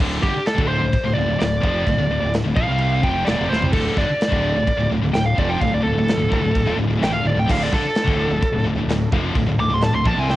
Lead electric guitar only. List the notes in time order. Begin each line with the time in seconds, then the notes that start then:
0.23 G4
0.46 A4
0.68 C5
1.14 D5
1.39 D5
2.56 F5
3.03 G5
3.25 D5
3.49 C5
3.73 A4
3.98 D5
5.14 G5
5.26 F5
5.39 D5
5.49 G5
5.61 F5
5.74 D5
5.83 A4
7.03 G5
7.13 F5
7.27 D5
7.39 G5
7.51 F5
7.63 D5
7.73 A4
9.60 D6
9.74 C6
9.83 A5
9.95 C6
10.07 A5
10.20 G#5
10.31 G5